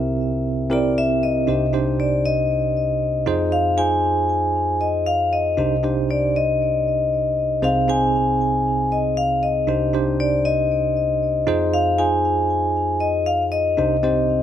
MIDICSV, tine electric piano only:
0, 0, Header, 1, 2, 480
1, 0, Start_track
1, 0, Tempo, 512821
1, 1380, Time_signature, 4, 2, 24, 8
1, 13504, End_track
2, 0, Start_track
2, 0, Title_t, "Tine electric piano"
2, 0, Program_c, 0, 4
2, 0, Control_c, 0, 64, 127
2, 0, Note_on_c, 0, 36, 64
2, 0, Note_on_c, 0, 48, 61
2, 0, Note_on_c, 0, 60, 75
2, 0, Note_on_c, 0, 63, 52
2, 0, Note_on_c, 0, 64, 67
2, 0, Note_on_c, 0, 67, 64
2, 0, Note_on_c, 0, 70, 76
2, 110, Note_off_c, 0, 60, 0
2, 111, Note_off_c, 0, 64, 0
2, 112, Note_off_c, 0, 67, 0
2, 114, Note_off_c, 0, 70, 0
2, 655, Note_on_c, 0, 60, 85
2, 658, Note_on_c, 0, 64, 79
2, 664, Note_on_c, 0, 67, 76
2, 667, Note_on_c, 0, 70, 95
2, 1146, Note_off_c, 0, 60, 0
2, 1148, Note_off_c, 0, 64, 0
2, 1151, Note_off_c, 0, 67, 0
2, 1152, Note_off_c, 0, 70, 0
2, 1342, Note_off_c, 0, 36, 0
2, 1342, Note_off_c, 0, 48, 0
2, 1378, Note_on_c, 0, 62, 66
2, 1381, Note_off_c, 0, 63, 0
2, 1381, Note_on_c, 0, 63, 62
2, 1384, Note_on_c, 0, 36, 59
2, 1384, Note_on_c, 0, 48, 64
2, 1385, Note_on_c, 0, 67, 65
2, 1390, Control_c, 0, 64, 0
2, 1390, Note_on_c, 0, 72, 77
2, 1542, Note_off_c, 0, 62, 0
2, 1543, Note_off_c, 0, 63, 0
2, 1545, Note_off_c, 0, 67, 0
2, 1548, Note_off_c, 0, 72, 0
2, 1571, Control_c, 0, 64, 127
2, 1620, Note_on_c, 0, 62, 72
2, 1621, Note_on_c, 0, 63, 66
2, 1625, Note_on_c, 0, 67, 63
2, 1630, Note_on_c, 0, 72, 84
2, 2272, Note_off_c, 0, 62, 0
2, 2272, Note_off_c, 0, 63, 0
2, 2274, Note_off_c, 0, 67, 0
2, 2277, Note_off_c, 0, 72, 0
2, 3024, Note_off_c, 0, 36, 0
2, 3024, Note_off_c, 0, 48, 0
2, 3054, Note_on_c, 0, 63, 92
2, 3058, Note_on_c, 0, 65, 85
2, 3059, Note_on_c, 0, 41, 80
2, 3062, Note_on_c, 0, 68, 80
2, 3064, Note_on_c, 0, 72, 102
2, 3074, Control_c, 0, 64, 0
2, 3237, Control_c, 0, 64, 127
2, 3441, Note_off_c, 0, 63, 0
2, 3443, Note_off_c, 0, 65, 0
2, 3445, Note_off_c, 0, 68, 0
2, 3446, Note_off_c, 0, 72, 0
2, 3533, Note_on_c, 0, 63, 74
2, 3536, Note_on_c, 0, 65, 67
2, 3541, Note_on_c, 0, 68, 66
2, 3546, Note_on_c, 0, 72, 82
2, 4188, Note_off_c, 0, 63, 0
2, 4190, Note_off_c, 0, 65, 0
2, 4192, Note_off_c, 0, 68, 0
2, 4195, Note_off_c, 0, 72, 0
2, 4942, Note_off_c, 0, 41, 0
2, 5216, Note_on_c, 0, 62, 72
2, 5218, Note_on_c, 0, 63, 66
2, 5221, Note_on_c, 0, 36, 64
2, 5222, Note_on_c, 0, 67, 67
2, 5223, Note_on_c, 0, 48, 64
2, 5227, Note_on_c, 0, 72, 78
2, 5231, Control_c, 0, 64, 0
2, 5381, Note_off_c, 0, 62, 0
2, 5382, Note_off_c, 0, 63, 0
2, 5384, Note_off_c, 0, 67, 0
2, 5386, Note_off_c, 0, 72, 0
2, 5421, Control_c, 0, 64, 127
2, 5457, Note_on_c, 0, 62, 73
2, 5462, Note_on_c, 0, 63, 68
2, 5465, Note_on_c, 0, 67, 70
2, 5468, Note_on_c, 0, 72, 82
2, 6110, Note_off_c, 0, 62, 0
2, 6113, Note_off_c, 0, 63, 0
2, 6114, Note_off_c, 0, 67, 0
2, 6116, Note_off_c, 0, 72, 0
2, 7103, Note_off_c, 0, 36, 0
2, 7104, Note_off_c, 0, 48, 0
2, 7136, Note_on_c, 0, 60, 72
2, 7139, Note_on_c, 0, 36, 64
2, 7139, Note_on_c, 0, 63, 65
2, 7140, Note_on_c, 0, 48, 67
2, 7141, Note_on_c, 0, 68, 70
2, 7146, Note_on_c, 0, 72, 82
2, 7151, Control_c, 0, 64, 0
2, 7301, Note_off_c, 0, 60, 0
2, 7302, Note_off_c, 0, 63, 0
2, 7303, Note_off_c, 0, 68, 0
2, 7306, Note_off_c, 0, 72, 0
2, 7306, Control_c, 0, 64, 127
2, 7377, Note_on_c, 0, 60, 72
2, 7380, Note_on_c, 0, 63, 72
2, 7385, Note_on_c, 0, 68, 72
2, 7387, Note_on_c, 0, 72, 76
2, 8030, Note_off_c, 0, 60, 0
2, 8032, Note_off_c, 0, 63, 0
2, 8034, Note_off_c, 0, 68, 0
2, 8035, Note_off_c, 0, 72, 0
2, 9022, Note_off_c, 0, 36, 0
2, 9023, Note_off_c, 0, 48, 0
2, 9053, Note_on_c, 0, 62, 67
2, 9057, Note_on_c, 0, 63, 66
2, 9059, Note_on_c, 0, 36, 61
2, 9059, Note_on_c, 0, 48, 61
2, 9063, Note_on_c, 0, 67, 66
2, 9065, Note_on_c, 0, 72, 83
2, 9073, Control_c, 0, 64, 0
2, 9219, Note_off_c, 0, 62, 0
2, 9221, Control_c, 0, 64, 127
2, 9222, Note_off_c, 0, 63, 0
2, 9224, Note_off_c, 0, 67, 0
2, 9225, Note_off_c, 0, 72, 0
2, 9298, Note_on_c, 0, 62, 74
2, 9304, Note_on_c, 0, 63, 67
2, 9304, Note_on_c, 0, 67, 67
2, 9308, Note_on_c, 0, 72, 82
2, 9951, Note_off_c, 0, 62, 0
2, 9954, Note_off_c, 0, 63, 0
2, 9954, Note_off_c, 0, 67, 0
2, 9956, Note_off_c, 0, 72, 0
2, 10702, Note_off_c, 0, 36, 0
2, 10702, Note_off_c, 0, 48, 0
2, 10734, Note_on_c, 0, 63, 99
2, 10737, Note_on_c, 0, 65, 90
2, 10740, Note_on_c, 0, 41, 78
2, 10740, Note_on_c, 0, 68, 87
2, 10745, Note_on_c, 0, 72, 101
2, 10750, Control_c, 0, 64, 0
2, 10893, Control_c, 0, 64, 127
2, 11121, Note_off_c, 0, 63, 0
2, 11122, Note_off_c, 0, 65, 0
2, 11124, Note_off_c, 0, 68, 0
2, 11126, Note_off_c, 0, 72, 0
2, 11218, Note_on_c, 0, 63, 75
2, 11221, Note_on_c, 0, 65, 67
2, 11225, Note_on_c, 0, 68, 64
2, 11228, Note_on_c, 0, 72, 77
2, 11871, Note_off_c, 0, 63, 0
2, 11872, Note_off_c, 0, 65, 0
2, 11874, Note_off_c, 0, 68, 0
2, 11876, Note_off_c, 0, 72, 0
2, 12622, Note_off_c, 0, 41, 0
2, 12892, Note_on_c, 0, 62, 70
2, 12898, Note_on_c, 0, 48, 67
2, 12898, Note_on_c, 0, 63, 68
2, 12899, Note_on_c, 0, 36, 67
2, 12900, Note_on_c, 0, 67, 65
2, 12903, Note_on_c, 0, 72, 84
2, 12912, Control_c, 0, 64, 0
2, 13059, Note_off_c, 0, 62, 0
2, 13062, Note_off_c, 0, 63, 0
2, 13063, Note_off_c, 0, 67, 0
2, 13064, Note_off_c, 0, 72, 0
2, 13099, Control_c, 0, 64, 127
2, 13133, Note_on_c, 0, 60, 76
2, 13135, Note_on_c, 0, 63, 65
2, 13139, Note_on_c, 0, 67, 68
2, 13144, Note_on_c, 0, 72, 82
2, 13504, Note_off_c, 0, 36, 0
2, 13504, Note_off_c, 0, 48, 0
2, 13504, Note_off_c, 0, 60, 0
2, 13504, Note_off_c, 0, 63, 0
2, 13504, Note_off_c, 0, 67, 0
2, 13504, Note_off_c, 0, 72, 0
2, 13504, End_track
0, 0, End_of_file